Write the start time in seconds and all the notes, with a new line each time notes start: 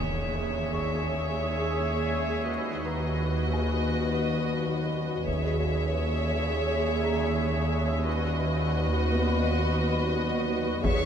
Already playing: D#2 G#4 C#5 E5, impact
0.73 C#6, taiko
2.48 F#4 B4 D#5
2.85 B4 A#5
3.53 G#4 G#5
5.27 D#2 G#4 C#5 E5, taiko
7.03 A#5
8.05 F#4 B4 D#5
9.12 B3 B4
10.85 D#2 G#4 C#5 E5 C#6, taiko